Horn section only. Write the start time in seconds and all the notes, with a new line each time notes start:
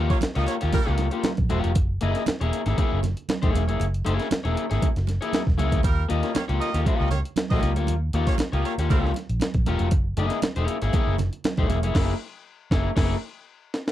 0.10 A#3 G4 C#5
0.36 A#3 G4 D#5
0.46 A#3 G4 C#5
0.73 G3 F4 A#4
5.83 G3 F4 A#4
6.22 A#3 G4 C#5
6.35 A#3 G4 C#5
6.60 A#3 G4 D#5
6.98 A#3 G4 D#5
7.10 A#3 G4 C#5
7.50 A#3 G4 D#5
8.27 A#3 G4 C#5
8.52 A#3 G4 D#5
8.64 A#3 G4 C#5
8.89 G3 F4 A#4